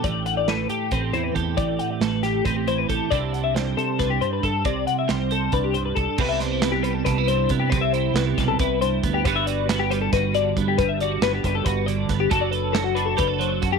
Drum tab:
CC |-------|-------|-------|-------|
HH |xxxxxxx|xxxxxxx|xxxxxxx|xxxxxxx|
SD |--o----|--oo---|--o-o--|--o----|
BD |o---o-o|o---o-o|o---o-o|o---o-o|

CC |x------|-------|-------|-------|
HH |-xxxxxx|xxxxxxx|xxxxxxx|xxxxxxx|
SD |-oo-o--|--oo---|--o-o--|--o---o|
BD |o---o-o|o--oo-o|o---o-o|o--oo-o|

CC |-------|
HH |xxxxxxx|
SD |--o----|
BD |o---o-o|